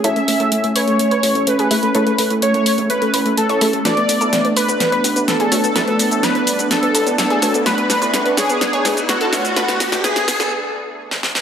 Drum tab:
HH |xxoxxxoxxxoxxxox|xxoxxxoxxxoxxxox|xxoxxxoxxxoxxxox|xxoxxxoxxxoxxxox|
SH |----------------|----------------|x-xxx-xxx-xxx-xx|x-xxx-xxx-xxx-xx|
SD |----------------|----------------|o---o---o---o---|o---o---o---o---|

HH |xxoxxxoxxxoxxxox|xxoxxxox--------|
SH |x-xxx-xxx-xxx-xx|x-xxx-xx--------|
SD |o-o-o-o-o-o-o-o-|oooooooo-----ooo|